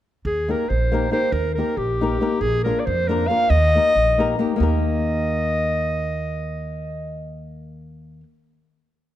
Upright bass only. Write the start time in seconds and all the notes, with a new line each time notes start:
0.25 D#2
0.70 A#1
1.32 D#2
1.77 A#1
2.41 A#1
2.87 F2
3.50 D#2
3.96 A#1
4.60 D#2